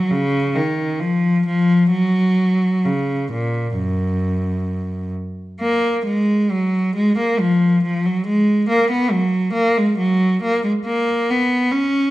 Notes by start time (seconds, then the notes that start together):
Already playing: F#3
0.11 C#3
0.54 D#3
1.00 F3
1.46 F3
1.91 F#3
2.85 C#3
3.32 A#2
3.76 F#2
5.61 A#3
6.05 G#3
6.51 F#3
6.96 G#3
7.18 A#3
7.39 F3
7.84 F3
8.05 F#3
8.26 G#3
8.69 A#3
8.90 B3
9.11 F#3
9.53 A#3
9.78 G#3
9.98 F#3
10.43 A#3
10.64 G#3
10.86 A#3
11.30 B3
11.72 C#4